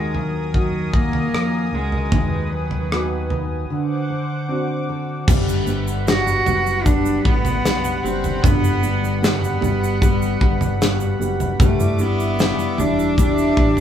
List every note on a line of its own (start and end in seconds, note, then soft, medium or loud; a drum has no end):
0.00 1.29 D#2 medium
0.00 2.08 D#3 medium
0.00 2.11 D#3 medium
0.00 0.18 G#3 medium
0.00 0.15 D#4 soft
0.00 0.51 D#4 soft
0.00 0.52 F#4 soft
0.00 0.94 F#4 medium
0.00 0.52 A#4 soft
0.00 2.09 A#4 medium
0.00 3.66 G#5 medium
0.00 3.66 D#6 medium
0.15 0.55 F#3 medium
0.15 1.33 D#4 medium
0.15 floor tom medium
0.54 0.97 F#3 medium
0.54 1.31 D#4 soft
0.54 1.31 F#4 soft
0.54 1.31 A#4 soft
0.54 kick medium
0.94 1.76 A#3 medium
0.94 1.73 F#4 medium
0.94 kick medium
1.13 floor tom medium
1.33 1.70 F2 medium
1.33 2.20 D#4 medium
1.33 cross-stick loud
1.73 2.14 C#2 medium
1.73 2.54 G#3 medium
1.73 2.91 F#4 medium
1.92 floor tom soft
2.12 3.66 D#2 loud
2.12 3.66 D#3 medium
2.12 3.70 D#3 medium
2.12 3.68 B4 medium
2.12 kick medium
2.12 floor tom loud
2.52 3.31 F#3 medium
2.52 3.30 D#4 medium
2.71 floor tom medium
2.91 3.68 B3 soft
2.91 3.68 D#4 soft
2.91 4.09 F#4 medium
2.91 3.68 F#4 medium
2.91 cross-stick medium
3.30 3.78 D#4 medium
3.30 floor tom medium
3.70 5.24 D3 medium
3.70 7.20 D3 medium
3.70 5.27 C5 medium
3.70 5.26 F#5 medium
3.70 5.27 D6 medium
4.10 4.88 A4 medium
4.48 5.25 C4 soft
4.48 5.26 D4 soft
4.48 5.48 F#4 medium
4.48 5.26 F#4 soft
4.89 5.36 A4 medium
5.28 6.42 G1 loud
5.28 5.66 G3 medium
5.28 6.86 G3 medium
5.28 13.80 G3 medium
5.28 11.56 F#5 medium
5.28 11.56 B5 medium
5.28 kick loud
5.28 floor tom loud
5.28 crash loud
5.28 shaker medium
5.48 5.87 D4 medium
5.48 shaker medium
5.67 6.06 G3 medium
5.67 6.46 B3 medium
5.67 shaker medium
5.87 6.26 D4 medium
5.87 shaker soft
6.07 6.45 G3 medium
6.07 7.64 F#4 medium
6.07 6.87 F#4 loud
6.07 snare loud
6.07 shaker medium
6.27 6.66 D4 medium
6.27 shaker soft
6.46 7.21 F#1 medium
6.46 6.84 G3 medium
6.46 7.25 B3 medium
6.46 floor tom medium
6.46 shaker medium
6.66 7.05 D4 medium
6.66 shaker soft
6.85 7.24 G3 medium
6.85 8.44 G3 medium
6.85 7.24 D4 loud
6.85 kick medium
6.85 shaker medium
7.06 7.45 D4 medium
7.06 shaker soft
7.25 7.62 A1 loud
7.25 7.63 G3 medium
7.25 8.04 B3 loud
7.25 8.83 B3 medium
7.25 kick loud
7.45 7.85 D4 medium
7.45 floor tom medium
7.45 shaker medium
7.64 8.01 B1 medium
7.64 8.03 G3 medium
7.64 9.22 F#4 medium
7.64 snare loud
7.64 shaker medium
7.84 8.24 D4 medium
7.84 shaker medium
8.03 8.41 F#1 medium
8.03 8.82 G3 medium
8.03 8.43 C4 medium
8.03 shaker medium
8.24 8.64 D4 medium
8.24 floor tom medium
8.24 shaker soft
8.42 9.58 G1 loud
8.42 11.55 D3 medium
8.42 10.02 G3 medium
8.42 9.21 B3 loud
8.42 kick loud
8.42 floor tom loud
8.42 shaker medium
8.64 9.03 D4 medium
8.64 shaker medium
8.83 9.21 G3 medium
8.83 9.62 B3 medium
8.83 shaker medium
9.03 9.43 D4 medium
9.03 shaker soft
9.22 9.60 G3 medium
9.22 11.16 B3 medium
9.22 10.80 F#4 medium
9.22 snare loud
9.22 shaker medium
9.43 9.82 D4 medium
9.43 shaker medium
9.61 10.37 G1 loud
9.61 10.00 G3 medium
9.61 10.41 B3 medium
9.61 floor tom medium
9.61 shaker medium
9.82 10.22 D4 medium
9.82 shaker soft
10.01 10.40 G3 medium
10.01 11.60 G3 medium
10.01 kick loud
10.01 shaker medium
10.22 10.61 D4 medium
10.22 shaker soft
10.41 11.16 G1 loud
10.41 10.80 G3 medium
10.41 11.20 B3 medium
10.41 kick medium
10.61 11.00 D4 medium
10.61 floor tom medium
10.61 shaker medium
10.81 11.18 G3 medium
10.81 11.68 F#4 medium
10.81 snare loud
10.81 shaker medium
11.00 11.40 D4 medium
11.00 shaker medium
11.20 11.57 F#1 medium
11.20 11.58 G3 medium
11.20 11.99 B3 medium
11.20 shaker soft
11.40 11.79 D4 medium
11.40 floor tom medium
11.40 shaker soft
11.60 12.54 G1 loud
11.60 13.17 G3 medium
11.60 11.98 G3 medium
11.60 12.03 A3 medium
11.60 13.80 E5 medium
11.60 13.80 D6 medium
11.60 kick loud
11.60 floor tom loud
11.60 shaker medium
11.80 12.18 E4 medium
11.80 shaker medium
11.99 12.37 G3 medium
11.99 12.81 B3 loud
11.99 12.78 D4 medium
11.99 shaker medium
12.19 12.58 E4 medium
12.19 shaker soft
12.39 12.78 G3 medium
12.39 13.80 B4 medium
12.39 snare loud
12.39 shaker medium
12.59 12.97 E4 medium
12.59 shaker soft
12.78 13.53 E1 loud
12.78 13.17 G3 medium
12.78 13.57 D4 medium
12.78 13.18 D4 medium
12.78 floor tom medium
12.78 shaker medium
12.98 13.37 E4 medium
12.98 shaker medium
13.18 13.80 G3 medium
13.18 13.57 G3 medium
13.18 13.80 D4 loud
13.18 kick medium
13.18 shaker medium
13.38 13.76 E4 medium
13.38 shaker medium
13.57 13.80 A1 medium
13.57 13.80 G3 medium
13.57 13.80 D4 medium
13.57 kick loud
13.77 13.80 E4 medium
13.77 floor tom medium